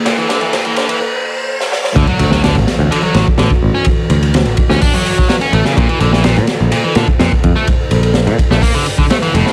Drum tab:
RD |x-xxxxxx--------|xxx-xxx-x-x-x---|x-xxxxx--xx-xxx-|xxx-xxx-x-x-x-x-|
HH |----------------|----------------|--------o-------|----------------|
SD |o-o-o-o------ooo|---oo-o---o-o---|----o--o----o--o|---oo-o---o-o---|
BD |----------------|o----------o-o--|o-----o-o--o----|o----------o-oo-|

RD |x-xxxxx--xx-xxx-|
HH |--------o-------|
SD |----o--o----o--o|
BD |o-----o-o--o----|